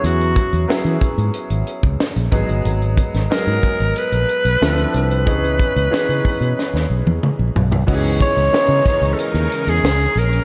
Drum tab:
CC |----------------|----------------|----------------|x---------------|
HH |xxxx-xxxxxxx-xxx|xxxx-xxxxxxx-xxx|xxxx-xox--------|-xxx-xxxxxxx-xxx|
SD |----o-------o---|---oo-------o---|----o---oo------|----o-o-----o---|
T1 |----------------|----------------|-----------o----|----------------|
T2 |----------------|----------------|------------o---|----------------|
FT |----------------|----------------|--------------oo|----------------|
BD |--o---o----o--o-|--o---o---------|o-o---o---------|o-o---o---------|